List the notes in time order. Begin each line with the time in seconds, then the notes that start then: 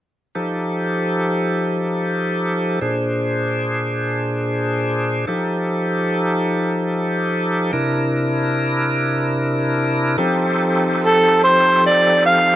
0.35 F3 D#4 G4 A4
2.81 A#2 D4 G#4 C5
5.27 F3 D#4 G4 A4
7.72 C3 D4 E4 A#4
10.18 F3 C4 D#4 G4 A4
11.04 A4
11.44 C5
11.87 D5
12.26 F5